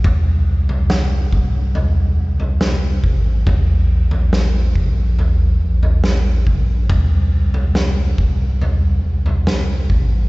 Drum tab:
SD |----o-------o---|----o-------o---|----o-------o---|
FT |o--o----o--o----|o--o----o--o----|o--o----o--o----|
BD |o-----o-------o-|o-----o-------o-|o-----o-------o-|